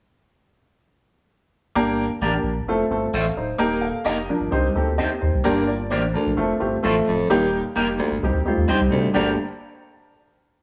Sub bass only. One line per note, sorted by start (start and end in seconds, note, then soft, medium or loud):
1.76 2.09 G1 medium
2.21 2.38 A1 medium
2.43 2.60 A#1 medium
2.66 2.84 F1 loud
2.90 3.07 G1 medium
3.13 3.30 A1 medium
3.36 3.53 D1 medium
3.59 3.93 D#1 loud
4.05 4.31 F1 medium
4.40 4.49 G1 medium
4.52 4.69 C2 loud
4.75 5.00 D2 medium
5.22 5.30 D#2 medium
5.34 5.42 C2 medium
5.45 5.92 G1 loud
5.91 6.16 A1 medium
6.26 6.34 A#1 medium
6.37 6.54 F1 loud
6.61 6.78 G1 medium
6.85 7.01 A1 medium
7.07 7.24 D1 medium
7.30 7.63 D#1 loud
7.76 8.01 F1 medium
8.11 8.19 G1 medium
8.22 8.31 C2 loud
8.34 8.42 D2 medium
8.57 8.65 D#2 medium
8.69 8.74 C2 soft
8.81 8.89 C2 medium
8.92 9.08 C3 medium
9.16 9.37 G1 medium